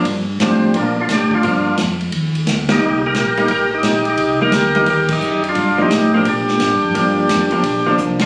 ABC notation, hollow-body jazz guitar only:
X:1
M:4/4
L:1/8
Q:"Swing" 1/4=174
K:Gm
V:1 name="Hollow-body jazz guitar"
z2 [F,D]2 [F,B,D] z3 | [F,B,D] z6 [G,B,E] | [G,B,E] z2 [G,B,E] z4 | z [G,B,E] z [G,B,E] z4 |
z [F,B,D] z [F,B,D] z4 | [F,B,D]3 [F,B,D] z [F,B,D]3 |]